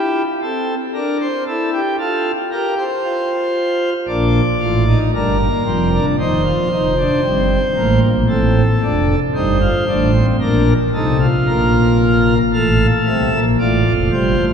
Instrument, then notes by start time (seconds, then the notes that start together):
pipe organ
Already playing: E4 G4
0.42 C4 A4
0.94 D4 A#4
1.21 C5
1.47 E4 A4
1.73 G4
1.99 F4 A4
2.52 G4 A#4
2.78 C5
3.04 F4
4.08 A#1 A#2 D4 D5
4.60 A1 A2 F4
4.87 D#4
5.14 G1 G2 D4 A#4
5.40 A#3
5.66 F1 F2 C4
5.93 D4
6.19 D#1 D#2 D#4 C5
6.46 F4
6.71 F1 F2 D#4
6.98 D4
7.24 G1 G2 C4
7.76 A1 A2 A#3
8.03 A#1 A#2
8.29 A1 A2 C4 A4
8.83 F1 F2 D4
9.35 G1 G2 D#4 C5
9.62 F4
9.88 A1 A2 D4
10.14 C4
10.40 A#1 A#2 D4 A#4
10.94 C2 C3 D#4 A4
11.20 F4
11.47 A#1 A#2 A#4
12.54 A1 A2 A4 F5
13.07 C2 C3 E5
13.34 A#1 A#2
13.60 A1 A2 F4 D5
13.86 F1 F2
14.12 G1 G2 C5
14.38 A1 A2